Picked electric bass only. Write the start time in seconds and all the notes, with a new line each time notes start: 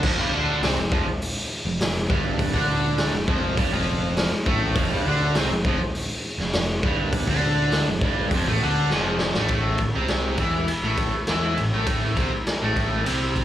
0.03 F1
0.18 G1
0.32 D2
0.62 C2
0.78 F1
0.92 F1
1.07 muted picked electric bass stroke
1.65 F1
1.80 F1
2.10 G1
2.55 D2
3.13 F1
3.28 F1
3.58 G1
3.72 F1
4.32 muted picked electric bass stroke
4.46 A1
4.76 F1
4.91 G1
5.05 D2
5.35 C2
5.49 F1
5.65 F1
5.80 muted picked electric bass stroke
6.38 F1
6.54 F1
6.84 G1
7.27 D2
7.88 F1
8.02 G1
8.32 F1
8.47 A1
8.61 D2
8.91 F1
9.35 A1
9.50 A1
9.79 A1
9.94 C2
10.39 E2
10.67 muted picked electric bass stroke
10.83 A1
11.14 muted picked electric bass stroke
11.28 E2
11.58 A1
11.74 A1
12.18 C2
12.32 muted picked electric bass stroke
12.63 A1
13.08 C2